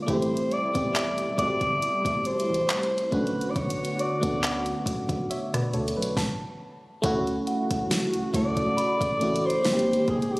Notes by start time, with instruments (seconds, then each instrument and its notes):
Already playing: fm electric piano F4
0.02 alto saxophone D5
0.06 analog synth bass A1, analog synth pad C3 G3 A3 E4, fm electric piano A3 C4 E4 G4, alto saxophone C5, kick, closed hi-hat
0.22 closed hi-hat
0.37 closed hi-hat
0.51 alto saxophone D5, closed hi-hat
0.73 analog synth bass E1, fm electric piano B3 C4 E4 G4, kick, closed hi-hat
0.96 celesta E5, clap, closed hi-hat
1.18 closed hi-hat
1.37 analog synth bass G1, fm electric piano A3 C4 E4 F#4, alto saxophone D5, kick, closed hi-hat
1.47 fm electric piano G4
1.61 analog synth bass G1, kick, closed hi-hat
1.82 closed hi-hat
2.05 kick, closed hi-hat
2.25 analog synth bass A1, alto saxophone C5, closed hi-hat
2.40 closed hi-hat
2.49 analog synth bass A1
2.54 closed hi-hat
2.69 clap, closed hi-hat
2.83 closed hi-hat
2.98 closed hi-hat
3.11 analog synth bass B1, analog synth pad D3 B3 F#4, fm electric piano A3 C#4 D4 F#4, alto saxophone B4, kick, closed hi-hat
3.27 closed hi-hat
3.41 closed hi-hat
3.50 alto saxophone D5
3.56 alto saxophone C#5, kick, closed hi-hat
3.70 closed hi-hat
3.85 closed hi-hat
3.99 alto saxophone D5, closed hi-hat
4.21 analog synth bass D2, fm electric piano A3 B3 D4 F#4, kick, closed hi-hat
4.43 celesta F#5, clap, closed hi-hat
4.66 closed hi-hat
4.86 analog synth bass B1, kick, closed hi-hat
5.09 analog synth bass B1, kick, closed hi-hat
5.30 fm electric piano C#5 E5, closed hi-hat
5.54 analog synth bass B2, fm electric piano B4 D5, cross-stick, closed hi-hat
5.74 analog synth bass D2, fm electric piano A4 C#5, closed hi-hat
5.88 closed hi-hat
5.97 analog synth bass B1, fm electric piano B4
6.02 closed hi-hat
6.17 celesta A5, kick, snare
7.02 analog synth bass D2, analog synth pad C#3 A3 F#4, fm electric piano A3 C#4 E4 F#4, kick, closed hi-hat
7.27 closed hi-hat
7.47 celesta F#5, closed hi-hat
7.71 analog synth bass C#2, kick, closed hi-hat
7.91 snare, closed hi-hat
8.14 analog synth bass D2, closed hi-hat
8.33 analog synth bass D2, fm electric piano C#3 A3 E4 A4, alto saxophone D5, kick, closed hi-hat
8.57 kick, closed hi-hat
8.77 celesta B5, closed hi-hat
9.01 analog synth bass A1, kick, closed hi-hat
9.20 analog synth bass A1, fm electric piano A3 C#4 E4 F#4, closed hi-hat
9.36 closed hi-hat
9.45 alto saxophone C5
9.50 closed hi-hat
9.63 analog synth bass G#1, analog synth pad D#3 G#3 C4 G4, fm electric piano A#3 C4 D#4 F4, snare, closed hi-hat
9.73 fm electric piano G4
9.79 closed hi-hat
9.93 closed hi-hat
10.08 analog synth bass F#1, alto saxophone G#4, kick, closed hi-hat
10.22 closed hi-hat
10.32 alto saxophone G4
10.37 closed hi-hat